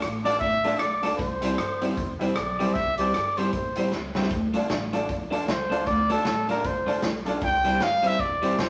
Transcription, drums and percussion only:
0.02 cross-stick, closed hi-hat
0.25 closed hi-hat
0.41 kick, closed hi-hat
0.64 closed hi-hat
0.79 cross-stick, closed hi-hat
1.03 closed hi-hat
1.18 kick, closed hi-hat
1.42 closed hi-hat
1.58 cross-stick, closed hi-hat
1.82 closed hi-hat
1.97 kick, closed hi-hat
2.21 closed hi-hat
2.36 cross-stick, closed hi-hat
2.60 closed hi-hat
2.75 kick, closed hi-hat
2.98 closed hi-hat
3.14 cross-stick, closed hi-hat
3.37 closed hi-hat
3.53 kick, closed hi-hat
3.76 closed hi-hat
3.92 snare
4.15 snare
4.22 snare
4.30 kick, closed hi-hat
4.54 closed hi-hat
4.70 snare, closed hi-hat
4.93 closed hi-hat
5.09 kick, closed hi-hat
5.32 closed hi-hat
5.48 snare, closed hi-hat
5.72 closed hi-hat
5.86 kick, closed hi-hat
6.10 closed hi-hat
6.25 snare, closed hi-hat
6.49 closed hi-hat
6.65 kick, closed hi-hat
6.88 closed hi-hat
7.02 snare, closed hi-hat
7.26 closed hi-hat
7.41 kick, closed hi-hat
7.65 closed hi-hat
7.80 snare, closed hi-hat
8.04 closed hi-hat
8.19 kick, closed hi-hat
8.43 closed hi-hat
8.59 snare, closed hi-hat

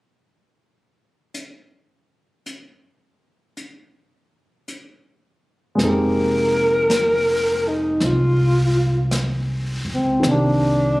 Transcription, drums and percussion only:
1.34 closed hi-hat
2.46 closed hi-hat
3.57 closed hi-hat
4.68 closed hi-hat
5.79 brush sweep, snare
6.90 brush sweep, snare, hi-hat pedal
8.00 brush sweep, snare
9.11 brush sweep, snare, hi-hat pedal
10.23 brush sweep, snare

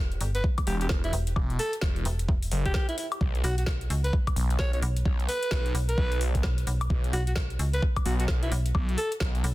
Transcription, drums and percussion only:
0.12 closed hi-hat
0.21 open hi-hat
0.35 closed hi-hat
0.44 kick
0.58 kick, closed hi-hat, high woodblock
0.67 open hi-hat
0.81 closed hi-hat
0.89 kick, snare
1.04 closed hi-hat
1.13 open hi-hat
1.27 closed hi-hat
1.36 kick, high woodblock
1.50 closed hi-hat
1.59 open hi-hat
1.73 closed hi-hat
1.81 kick, snare
1.96 closed hi-hat
2.05 open hi-hat
2.19 closed hi-hat
2.29 kick
2.43 open hi-hat
2.51 open hi-hat
2.66 kick, closed hi-hat
2.74 kick, snare
2.89 closed hi-hat
2.98 open hi-hat
3.12 closed hi-hat, high woodblock
3.21 kick
3.35 closed hi-hat
3.44 open hi-hat
3.58 closed hi-hat
3.66 kick, snare
3.81 closed hi-hat
3.90 open hi-hat
4.04 closed hi-hat
4.13 kick
4.27 kick, closed hi-hat, high woodblock
4.36 open hi-hat
4.50 closed hi-hat
4.59 kick, snare
4.73 closed hi-hat
4.82 open hi-hat
4.97 closed hi-hat
5.05 kick
5.20 closed hi-hat
5.29 open hi-hat
5.43 closed hi-hat
5.51 kick, snare
5.66 closed hi-hat
5.75 open hi-hat
5.89 closed hi-hat
5.98 kick
6.12 closed hi-hat
6.21 open hi-hat
6.35 kick, closed hi-hat
6.43 kick, snare
6.58 closed hi-hat
6.67 open hi-hat
6.81 closed hi-hat, high woodblock
6.90 kick
7.04 closed hi-hat
7.13 open hi-hat
7.27 closed hi-hat
7.36 kick, snare
7.50 closed hi-hat
7.59 open hi-hat
7.74 closed hi-hat
7.82 kick
7.96 kick, closed hi-hat, high woodblock
8.06 open hi-hat
8.20 closed hi-hat
8.28 kick, snare
8.43 closed hi-hat
8.52 open hi-hat
8.66 closed hi-hat
8.75 kick, high woodblock
8.89 closed hi-hat
8.98 open hi-hat
9.12 closed hi-hat
9.20 kick, snare
9.35 closed hi-hat
9.44 open hi-hat

